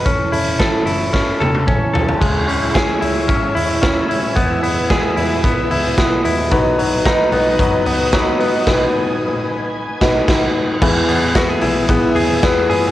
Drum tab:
CC |----------------|x---------------|----------------|----------------|
RD |----------------|----------------|----------------|----------------|
HH |x-o-x-o---------|--o-x-o-x-o-x-o-|x-o-x-o-x-o-x-o-|x-o-x-o-x-o-x-o-|
SD |----o---o-------|----o-------o---|----o-------o---|----o-------o---|
T1 |----------oo----|----------------|----------------|----------------|
T2 |------------o---|----------------|----------------|----------------|
FT |--------------oo|----------------|----------------|----------------|
BD |o---o---o---o---|o---o---o---o---|o---o---o---o---|o---o---o---o---|

CC |x-----------x---|x---------------|
RD |----------------|----x---x---x---|
HH |----------------|--o-p-o-p-o-p-o-|
SD |o---------o-o---|----o-------o---|
T1 |----------------|----------------|
T2 |----------------|----------------|
FT |----------------|----------------|
BD |o---------o-o---|o---o---o---o---|